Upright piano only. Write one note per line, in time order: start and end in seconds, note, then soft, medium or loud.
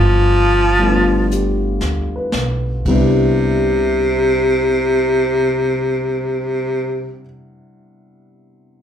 0.79 2.84 G3 soft
0.79 2.86 A3 soft
0.86 2.87 B3 soft
0.86 2.88 D4 soft
0.91 2.90 F4 soft
1.33 2.57 G4 soft
2.16 3.27 B4 soft
2.87 7.20 C3 soft
2.87 7.20 G3 soft
2.87 7.21 B3 soft
2.87 7.22 D4 soft
2.87 7.23 E4 soft